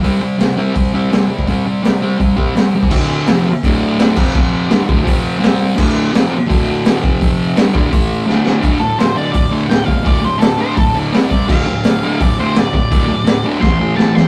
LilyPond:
<<
  \new Staff \with { instrumentName = "Lead electric guitar" } { \time 4/4 \key d \minor \tempo 4 = 168 r1 | r1 | r1 | r1 |
r1 | r1 | r8 a'8 c''8 d''8 d''8 r8 g''8 f''8 | d''8 c''8 a'8 c''8 a'8 r4 d''8 |
f''2 d''8 c''8 d''8 d''8~ | d''4. r8 c'''4 a''8 c'''8 | }
  \new Staff \with { instrumentName = "Distorted electric guitar" } { \clef bass \time 4/4 \key d \minor <c g c'>8 <c g>8 <c g>8 <c g c'>8 <c g>8 <c g c'>8 <c g>8 <c g>8 | <c g c'>8 <c g>8 <c g>8 <c g c'>8 <c g>8 <c g c'>8 <c g>8 <c g>8 | <d, a, d>4 <f, c f>8 r8 <d, a, d>4. <f, c f>8~ | <f, c f>4 <g, d g>8 <d, a, d>8 <f, c f>4 <c g c'>4 |
<d, a, d>4 <f, c f>8 r8 <d, a, d>4. <f, c f>8~ | <f, c f>4 <g, d g>8 <d, a, d>8 <a, e a>4 <d, a, d>4 | <d, a, d>8 <d, a,>8 <d, a,>8 <d, a, d>8 <d, a,>8 <d, a, d>8 <d, a,>8 <d, a,>8 | <d, a, d>8 <d, a,>8 <d, a,>8 <d, a, d>8 <d, a,>8 <d, a, d>8 <c g c'>8 <c g>8 |
<d, a, d>8 <d, a,>8 <d, a,>8 <d, a, d>8 <d, a,>8 <d, a, d>8 <d, a,>8 <d, a,>8 | <d, a, d>8 <d, a,>8 <d, a,>8 <d, a, d>8 <a, e a>8 <a, e a>8 <a, e a>8 <a, e>8 | }
  \new DrumStaff \with { instrumentName = "Drums" } \drummode { \time 4/4 <hho bd>4 <hho sn>4 <hho bd>4 <hho sn>8. bd16 | <hho bd>4 <hho sn>4 <hho bd>8 bd8 <hho sn>8. bd16 | <cymc bd>4 <hho sn>4 <hho bd>4 <hho sn>8 <cymc bd>8 | bd4 <hho sn>8 bd8 <hho bd>4 <hho sn>4 |
<cymc bd>4 <hho sn>4 <hho bd>4 <hho sn>8 bd8 | <hho bd>4 <hho sn>8 bd8 <hho bd>4 sn8 sn8 | <hho bd>4 <hho sn>4 <hho bd>4 <hho sn>8 bd8 | <hho bd>4 <hho sn>4 <hho bd>4 <hho sn>8 bd8 |
<cymc bd>4 <hho sn>4 <hho bd>4 <hho sn>8 bd8 | <hho bd>4 <hho sn>4 <bd sn>4 sn8 sn8 | }
>>